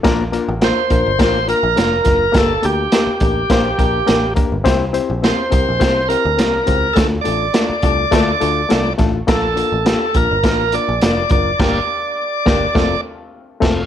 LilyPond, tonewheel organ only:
\new Staff \with { instrumentName = "Tonewheel organ" } { \time 4/4 \key bes \lydian \tempo 4 = 104 r4 c''4 c''8 bes'4. | a'8 g'2. r8 | r4 c''4 c''8 bes'4. | a'8 d''2. r8 |
a'4. bes'4 d''4 d''8~ | d''2~ d''8 r4. | }